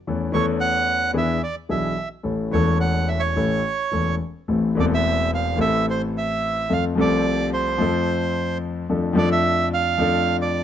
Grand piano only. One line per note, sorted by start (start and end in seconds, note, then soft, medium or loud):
0.07 0.29 E2 soft
0.07 0.29 E3 soft
0.07 0.29 A3 soft
0.07 0.30 C#4 soft
0.07 0.30 A4 soft
0.32 1.11 E2 medium
0.32 0.34 E3 medium
0.32 1.11 E3 medium
0.32 1.11 A3 medium
0.32 1.12 C#4 medium
0.32 1.12 A4 medium
1.13 1.37 E2 medium
1.13 1.38 E3 medium
1.13 1.37 B3 soft
1.13 1.37 D4 soft
1.13 1.38 G#4 medium
1.69 1.93 B1 soft
1.69 1.93 B2 soft
1.69 1.92 E3 soft
1.69 1.93 B3 soft
1.69 1.93 D4 soft
1.69 1.93 G#4 soft
2.23 2.48 A1 soft
2.23 2.47 A2 soft
2.23 2.48 E3 soft
2.23 2.48 A3 soft
2.23 2.47 C#4 soft
2.23 2.47 A4 soft
2.51 3.32 E1 medium
2.51 3.32 E2 medium
2.51 3.31 E3 medium
2.51 3.32 A3 medium
2.51 3.32 C#4 medium
2.51 3.33 A4 medium
3.36 3.60 A1 medium
3.36 3.60 A2 medium
3.36 3.60 E3 medium
3.36 3.60 A3 soft
3.36 3.60 C#4 soft
3.36 3.60 A4 medium
3.92 4.16 E1 soft
3.92 4.16 E2 soft
3.92 4.16 E3 soft
3.92 4.16 A3 soft
3.92 4.16 C#4 soft
3.92 4.16 A4 soft
4.48 4.72 A1 soft
4.48 4.72 A2 soft
4.48 4.72 E3 soft
4.48 4.72 A3 soft
4.48 4.72 C4 soft
4.48 4.72 A4 soft
4.75 5.56 E1 medium
4.75 5.56 E2 medium
4.75 5.54 E3 medium
4.75 5.55 A3 medium
4.75 5.56 C4 medium
4.80 5.57 A4 medium
5.56 6.64 A1 medium
5.56 6.64 A2 medium
5.56 6.63 E3 medium
5.56 6.63 A3 medium
5.56 6.64 C4 soft
5.61 6.65 A4 medium
6.69 6.93 F2 soft
6.69 6.93 F3 soft
6.69 6.93 A3 soft
6.69 6.93 C4 soft
6.69 6.93 A4 soft
6.95 7.75 C2 medium
6.95 7.75 C3 medium
6.95 7.74 F3 medium
6.95 7.75 A3 medium
6.95 7.76 C4 medium
7.00 7.76 A4 medium
7.78 8.83 F2 medium
7.78 8.83 F3 medium
7.78 8.83 A3 medium
7.78 8.84 C4 medium
7.82 8.84 A4 medium
8.89 9.12 F2 medium
8.89 9.12 F3 soft
8.89 9.12 A3 soft
8.89 9.12 D4 soft
8.89 9.12 A4 soft
9.13 9.93 F2 medium
9.13 9.15 F3 medium
9.13 9.94 F3 medium
9.13 9.93 A3 medium
9.13 9.94 D4 medium
9.17 9.94 A4 medium
9.98 10.64 F2 medium
9.98 10.64 F3 medium
9.98 10.64 A3 soft
9.98 10.64 D4 medium
9.98 10.64 A4 medium